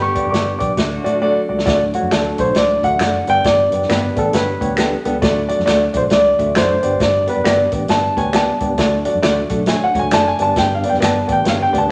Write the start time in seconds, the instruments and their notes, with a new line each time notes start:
Already playing: fingered electric bass G1, horn section D3 G3 B3 G4, tonewheel organ D3 G3 B3 D4
0.02 grand piano C#6
0.15 upright piano B3 D4 G4 D5, kick, closed hi-hat
0.25 fingered electric bass F#1
0.29 fingered electric bass G1, upright piano B3 D4 G4 D5, grand piano C#6 D6
0.34 snare, closed hi-hat
0.59 fingered electric bass B1, upright piano B3 D4 G4 D5, grand piano D6, kick, closed hi-hat
0.77 fingered electric bass D2, horn section D3 F#3 A3 F#4, tonewheel organ F#3 A3, upright piano A3 D4 F#4 D5, kick, snare, closed hi-hat
1.04 fingered electric bass A2, upright piano A3 D4 F#4 D5, closed hi-hat
1.22 upright piano A3 D4 F#4 D5
1.49 fingered electric bass C#2, upright piano A3 D4 F#4 D5
1.59 snare
1.66 fingered electric bass D2, tonewheel organ D3 F#3 A3 D4, upright piano A3 D4 F#4 D5, kick, snare, closed hi-hat
1.94 upright piano A3 D4 F#4 C#5, grand piano F#4, closed hi-hat
2.02 fingered electric bass F#2
2.11 fingered electric bass D2, upright piano A3 D4 F#4 D5, grand piano A4, finger snap, snare, closed hi-hat
2.38 fingered electric bass B1, upright piano A3 D4 F#4 C#5, grand piano C5, kick, closed hi-hat
2.55 fingered electric bass C#2, upright piano A3 D4 F#4 D5, grand piano D5, snare, closed hi-hat
2.83 fingered electric bass D2, upright piano A3 D4 F#4 E5, grand piano F#5, kick, closed hi-hat
2.99 fingered electric bass F#1, upright piano A3 D4 F#4 D5, finger snap, snare, closed hi-hat
3.27 fingered electric bass G1, tonewheel organ G3 B3, upright piano B3 D4 G4 D5, grand piano G5, closed hi-hat
3.44 fingered electric bass G1, grand piano D5, kick, snare, closed hi-hat
3.72 fingered electric bass F#1, upright piano B3 D4 G4 D5, closed hi-hat
3.82 snare
3.89 fingered electric bass G1, upright piano B3 D4 G4 D5, grand piano B4, finger snap, snare, closed hi-hat
4.16 fingered electric bass A1, upright piano B3 D4 G4 D5, grand piano A4, kick, closed hi-hat
4.33 fingered electric bass G1, upright piano B3 D4 G4 C#5, grand piano B4, snare, closed hi-hat
4.61 fingered electric bass D2, upright piano B3 D4 G4 C#5, kick, closed hi-hat
4.77 upright piano B3 D4 G4 A4, finger snap, snare, closed hi-hat
5.05 fingered electric bass C#2, upright piano B3 D4 G4 A4, closed hi-hat
5.22 fingered electric bass D2, tonewheel organ F#3 A3, upright piano A3 D4 F#4 D5, kick, snare, closed hi-hat
5.49 upright piano A3 D4 F#4 D5, closed hi-hat
5.59 fingered electric bass F#2, snare
5.66 fingered electric bass D2, upright piano A3 D4 F#4 D5, finger snap, snare, closed hi-hat
5.94 fingered electric bass B1, upright piano A3 D4 F#4 D5, grand piano C5, kick, closed hi-hat
6.10 fingered electric bass C#2, upright piano A3 D4 F#4 D5, grand piano D5, snare, closed hi-hat
6.38 fingered electric bass D2, upright piano A3 D4 F#4 E5, kick, closed hi-hat
6.55 fingered electric bass F#1, upright piano A3 D4 F#4 D5, grand piano C5, finger snap, snare, closed hi-hat
6.83 fingered electric bass G1, tonewheel organ G3 B3, upright piano B3 D4 G4 D5, closed hi-hat
7.00 fingered electric bass G1, grand piano D5, kick, snare, closed hi-hat
7.27 upright piano B3 D4 G4 D5, grand piano B4, closed hi-hat
7.37 fingered electric bass F#1
7.44 fingered electric bass G1, upright piano B3 D4 G4 D5, grand piano D5, finger snap, snare, closed hi-hat
7.72 fingered electric bass A1, upright piano B3 D4 G4 D5, kick, closed hi-hat
7.88 fingered electric bass G1, upright piano B3 D4 G4 D5, grand piano A5, snare, closed hi-hat
8.17 fingered electric bass D2, upright piano B3 D4 G4 C#5, grand piano G#5, kick, closed hi-hat
8.33 upright piano B3 D4 G4 D5, grand piano A5, finger snap, snare, closed hi-hat
8.60 fingered electric bass C#2, upright piano B3 D4 G4 D5, kick, closed hi-hat
8.78 fingered electric bass D2, upright piano A3 D4 F#4 D5, tonewheel organ A3, kick, snare, closed hi-hat
9.05 upright piano A3 D4 F#4 D5, closed hi-hat
9.14 fingered electric bass F#2
9.22 fingered electric bass D2, upright piano A3 D4 F#4 D5, finger snap, snare, closed hi-hat
9.50 fingered electric bass B1, upright piano A3 D4 F#4 A4, kick, closed hi-hat
9.66 upright piano A3 D4 F#4 C#5, grand piano G#5, snare, closed hi-hat
9.84 grand piano F#5
9.95 fingered electric bass C#2, upright piano A3 D4 F#4 C#5, kick, closed hi-hat
9.99 grand piano G#5
10.04 fingered electric bass D2
10.11 fingered electric bass F#1, upright piano A3 D4 F#4 D5, grand piano A5, finger snap, snare, closed hi-hat
10.28 grand piano G#5
10.39 fingered electric bass G1, tonewheel organ G3 B3 D4, upright piano B3 D4 G4 D5, grand piano A5, closed hi-hat
10.56 fingered electric bass G1, grand piano G5, kick, snare, closed hi-hat
10.74 grand piano F5
10.83 upright piano B3 D4 G4 D5, closed hi-hat
10.90 fingered electric bass F#1, grand piano G5
10.94 snare
11.00 fingered electric bass G1, upright piano B3 D4 G4 D5, grand piano A5, finger snap, snare, closed hi-hat
11.28 fingered electric bass A1, upright piano B3 D4 G4 D5, kick, closed hi-hat
11.32 grand piano G5
11.44 fingered electric bass G1, upright piano B3 D4 G4 C#5, grand piano F5, snare, closed hi-hat
11.62 grand piano G5
11.73 fingered electric bass D2, upright piano B3 D4 G4 D5, kick, closed hi-hat
11.78 grand piano A5